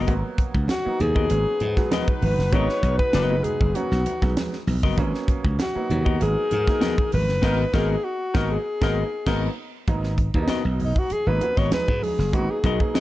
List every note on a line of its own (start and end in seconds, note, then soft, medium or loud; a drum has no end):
0.00 0.14 B3 medium
0.00 0.13 F#4 medium
0.00 0.13 A#4 medium
0.00 0.12 D#5 medium
0.07 0.22 G#1 medium
0.07 0.64 F#3 loud
0.07 0.64 A#3 medium
0.07 0.64 B3 medium
0.07 0.64 F#4 loud
0.07 kick loud
0.07 closed hi-hat medium
0.07 muted conga medium
0.38 kick medium
0.38 closed hi-hat medium
0.38 muted conga soft
0.55 0.67 C#2 medium
0.55 kick loud
0.68 1.02 F#4 medium
0.68 snare medium
0.68 closed hi-hat medium
0.68 high conga medium
0.85 1.19 F#3 medium
0.85 1.19 A#3 medium
0.85 1.19 B3 medium
0.85 1.19 D#4 medium
0.85 muted slap bass stroke medium
1.00 1.27 D#2 medium
1.00 1.92 G#4 loud
1.00 closed hi-hat medium
1.00 low conga medium
1.15 1.29 B3 medium
1.15 1.29 F#4 medium
1.15 1.28 A#4 medium
1.15 1.28 D#5 medium
1.15 kick medium
1.29 1.44 G#1 loud
1.29 1.53 F#3 medium
1.29 1.53 A#3 medium
1.29 1.53 B3 medium
1.29 1.54 C#4 medium
1.29 4.62 D#4 medium
1.29 4.63 F#4 medium
1.29 4.63 B4 medium
1.29 closed hi-hat medium
1.29 muted conga soft
1.60 1.75 G#2 medium
1.60 1.69 B3 soft
1.60 1.69 D#4 soft
1.60 closed hi-hat medium
1.60 muted conga medium
1.77 2.11 F#3 medium
1.77 2.11 G#3 medium
1.77 2.11 B3 medium
1.77 2.11 F#4 medium
1.77 kick medium
1.77 snare soft
1.91 2.05 B3 medium
1.91 2.06 F#4 medium
1.91 2.06 A#4 medium
1.91 2.06 D#5 loud
1.91 snare loud
1.91 closed hi-hat medium
1.91 high conga medium
2.08 kick loud
2.21 2.36 G#1 medium
2.21 2.30 B3 soft
2.21 2.31 D#4 soft
2.21 2.54 B4 medium
2.21 open hi-hat medium
2.21 high conga medium
2.38 2.51 F#1 medium
2.38 snare soft
2.52 2.67 G#1 loud
2.52 3.09 F#3 medium
2.52 3.09 G#3 medium
2.52 3.09 B3 medium
2.52 2.67 B3 medium
2.52 2.60 D4 medium
2.52 2.67 F#4 medium
2.52 2.68 A#4 medium
2.52 2.98 C#5 loud
2.52 2.68 D#5 medium
2.52 kick loud
2.52 closed hi-hat medium
2.52 muted conga medium
2.60 3.13 D#4 medium
2.69 snare soft
2.83 2.97 B1 loud
2.83 kick medium
2.83 closed hi-hat medium
2.83 muted conga soft
2.98 3.45 B4 loud
2.98 kick medium
3.13 3.40 F#1 loud
3.13 3.35 B3 medium
3.13 3.35 F#4 medium
3.13 3.35 A#4 medium
3.13 3.35 D#5 medium
3.13 snare loud
3.13 closed hi-hat medium
3.13 high conga medium
3.30 3.64 F#3 medium
3.30 3.64 G#3 medium
3.30 3.64 B3 medium
3.30 3.64 D#4 medium
3.44 3.76 G#4 medium
3.44 closed hi-hat medium
3.44 low conga medium
3.61 3.73 F#1 medium
3.61 kick medium
3.61 low conga medium
3.75 3.98 F#3 medium
3.75 3.98 A#3 medium
3.75 3.98 B3 medium
3.75 3.99 C#4 medium
3.75 4.36 F#4 medium
3.75 closed hi-hat medium
3.75 muted conga soft
3.91 4.04 B1 medium
3.91 snare soft
4.06 4.14 B3 soft
4.06 4.14 D#4 soft
4.06 closed hi-hat medium
4.06 muted conga medium
4.22 4.34 B1 medium
4.22 4.56 F#3 medium
4.22 4.56 G#3 medium
4.22 4.56 B3 medium
4.22 4.56 F#4 medium
4.22 kick medium
4.22 snare soft
4.37 snare loud
4.37 closed hi-hat loud
4.37 high conga medium
4.53 snare soft
4.67 4.81 B1 medium
4.67 4.75 B3 soft
4.67 4.76 D#4 soft
4.67 open hi-hat medium
4.67 high conga medium
4.83 4.96 F#1 medium
4.83 4.97 B3 medium
4.83 4.96 F#4 medium
4.83 4.96 A#4 medium
4.83 4.96 D#5 medium
4.83 kick loud
4.83 snare soft
4.97 5.12 G#1 loud
4.97 5.54 F#3 loud
4.97 5.54 A#3 medium
4.97 5.55 B3 medium
4.97 5.55 C#4 loud
4.97 kick loud
4.97 closed hi-hat medium
4.97 muted conga medium
5.15 snare soft
5.28 kick loud
5.28 closed hi-hat medium
5.28 muted conga soft
5.44 5.57 C#2 medium
5.44 kick loud
5.59 6.17 F#4 medium
5.59 snare loud
5.59 closed hi-hat medium
5.59 high conga medium
5.75 6.09 F#3 medium
5.75 6.09 A#3 medium
5.75 6.09 B3 medium
5.75 6.09 D#4 medium
5.75 muted slap bass stroke soft
5.90 6.17 D#2 medium
5.90 closed hi-hat medium
5.90 low conga medium
6.05 6.19 B3 medium
6.05 6.18 F#4 medium
6.05 6.18 A#4 medium
6.05 6.18 D#5 medium
6.05 kick medium
6.19 6.35 G#1 loud
6.19 6.43 F#3 medium
6.19 6.43 A#3 medium
6.19 6.43 B3 medium
6.19 7.40 D#4 medium
6.19 6.43 D#4 medium
6.19 7.40 F#4 medium
6.19 7.09 G#4 loud
6.19 7.40 A#4 medium
6.19 closed hi-hat medium
6.19 muted conga soft
6.51 6.66 G#2 medium
6.51 6.59 B3 soft
6.51 6.59 D#4 soft
6.51 closed hi-hat medium
6.51 muted conga medium
6.67 7.01 F#3 medium
6.67 7.01 A#3 medium
6.67 7.01 B3 medium
6.67 7.01 D#4 medium
6.67 kick medium
6.67 snare soft
6.80 6.95 B3 medium
6.80 6.95 F#4 medium
6.80 6.96 A#4 medium
6.80 6.96 D#5 medium
6.80 snare loud
6.80 closed hi-hat medium
6.80 high conga medium
6.98 kick medium
7.12 7.30 G#1 medium
7.12 7.20 B3 soft
7.12 7.21 D#4 soft
7.12 7.76 B4 loud
7.12 open hi-hat medium
7.12 high conga medium
7.29 7.43 F#1 medium
7.29 snare soft
7.42 7.64 G#1 medium
7.42 7.64 F#3 medium
7.42 7.64 A#3 medium
7.42 7.63 B3 loud
7.42 7.64 B3 medium
7.42 7.58 D#4 loud
7.42 7.64 D#4 medium
7.42 7.58 F#4 loud
7.42 7.64 F#4 loud
7.42 7.59 A#4 loud
7.42 7.64 A#4 loud
7.42 7.65 D#5 medium
7.42 kick loud
7.42 snare loud
7.42 crash medium
7.72 7.95 G#1 loud
7.72 7.95 F#3 medium
7.72 7.95 A#3 loud
7.72 7.94 B3 loud
7.72 7.95 B3 medium
7.72 7.89 D#4 loud
7.72 7.95 D#4 medium
7.72 7.89 F#4 loud
7.72 7.95 F#4 loud
7.72 8.05 G#4 medium
7.72 7.89 A#4 loud
7.72 7.95 A#4 loud
7.72 7.95 D#5 loud
7.72 kick loud
7.72 snare loud
8.04 8.51 F#4 medium
8.34 8.56 G#1 medium
8.34 8.56 F#3 loud
8.34 8.57 A#3 medium
8.34 8.56 B3 medium
8.34 8.57 B3 medium
8.34 8.50 D#4 loud
8.34 8.50 F#4 loud
8.34 8.56 F#4 medium
8.34 8.57 F#4 loud
8.34 8.50 A#4 loud
8.34 8.56 A#4 loud
8.34 8.57 D#5 loud
8.34 kick loud
8.34 snare medium
8.52 9.54 G#4 medium
8.81 9.02 G#1 medium
8.81 9.03 F#3 loud
8.81 9.03 A#3 loud
8.81 9.02 B3 medium
8.81 9.03 B3 loud
8.81 8.97 D#4 medium
8.81 9.03 D#4 medium
8.81 8.97 F#4 medium
8.81 9.02 F#4 medium
8.81 8.97 A#4 loud
8.81 9.03 A#4 medium
8.81 9.03 D#5 loud
8.81 kick loud
8.81 snare loud
9.26 9.48 G#1 loud
9.26 9.48 F#3 loud
9.26 9.48 A#3 loud
9.26 9.48 B3 loud
9.26 9.49 B3 loud
9.26 9.42 D#4 medium
9.26 9.49 D#4 medium
9.26 9.42 F#4 medium
9.26 9.49 F#4 loud
9.26 9.42 A#4 medium
9.26 9.48 A#4 loud
9.26 9.48 D#5 loud
9.26 kick loud
9.26 snare medium
9.26 crash medium
9.88 10.28 G#1 loud
9.88 10.11 F#3 loud
9.88 10.11 A#3 medium
9.88 10.11 B3 medium
9.88 10.11 D#4 loud
9.88 kick loud
9.88 closed hi-hat medium
9.88 muted conga medium
10.04 snare soft
10.18 10.26 B3 soft
10.18 10.27 D#4 soft
10.18 kick medium
10.18 closed hi-hat medium
10.34 10.47 D#2 medium
10.34 11.02 F#3 medium
10.34 11.02 A#3 medium
10.34 11.02 B3 medium
10.34 10.41 D4 medium
10.34 kick medium
10.42 11.06 D#4 loud
10.48 10.63 B3 medium
10.48 10.63 F#4 medium
10.48 10.63 A#4 medium
10.48 10.63 D#5 medium
10.48 muted slap bass stroke medium
10.48 snare loud
10.48 closed hi-hat medium
10.48 high conga medium
10.65 10.92 B1 medium
10.80 11.00 D#4 medium
10.80 open hi-hat soft
10.80 low conga medium
10.96 11.14 F#4 medium
10.96 kick medium
11.10 11.29 G#4 loud
11.10 muted slap bass stroke medium
11.10 closed hi-hat medium
11.10 muted conga soft
11.26 11.39 G#1 medium
11.26 11.38 F#3 medium
11.26 11.38 A#3 medium
11.26 11.38 B3 medium
11.26 11.38 D#4 medium
11.26 11.60 B4 loud
11.41 11.64 F#3 medium
11.41 11.65 A#3 medium
11.41 11.65 B3 medium
11.41 11.65 F#4 medium
11.41 closed hi-hat medium
11.41 muted conga medium
11.57 11.70 G#1 medium
11.57 11.70 B3 medium
11.57 11.71 F#4 medium
11.57 11.70 A#4 medium
11.57 11.72 C#5 loud
11.57 11.70 D#5 medium
11.57 kick medium
11.57 snare soft
11.71 12.18 F#3 medium
11.71 12.18 G#3 medium
11.71 12.18 B3 medium
11.71 12.18 D#4 medium
11.71 12.05 B4 medium
11.71 snare loud
11.71 closed hi-hat loud
11.71 high conga medium
11.88 12.01 G#2 medium
11.88 kick medium
11.88 high conga soft
12.02 12.36 G#4 medium
12.02 open hi-hat medium
12.02 high conga medium
12.18 12.33 F#1 medium
12.18 snare soft
12.33 12.47 G#1 loud
12.33 12.56 F#3 medium
12.33 12.56 A#3 medium
12.33 12.56 B3 medium
12.33 12.56 D#4 medium
12.33 12.52 F#4 medium
12.33 kick medium
12.33 closed hi-hat medium
12.33 muted conga medium
12.50 13.00 G#4 medium
12.64 12.78 B1 loud
12.64 12.72 B3 soft
12.64 12.78 B3 medium
12.64 12.72 D#4 soft
12.64 12.78 F#4 loud
12.64 12.78 A#4 loud
12.64 12.79 D#5 loud
12.64 kick medium
12.64 closed hi-hat medium
12.64 muted conga soft
12.80 13.00 F#3 medium
12.80 13.00 A#3 medium
12.80 13.00 B3 medium
12.80 13.00 D#4 medium
12.80 kick medium
12.94 13.00 B3 medium
12.94 13.00 F#4 medium
12.94 13.00 A#4 medium
12.94 13.00 D#5 medium
12.94 snare loud
12.94 closed hi-hat medium
12.94 high conga medium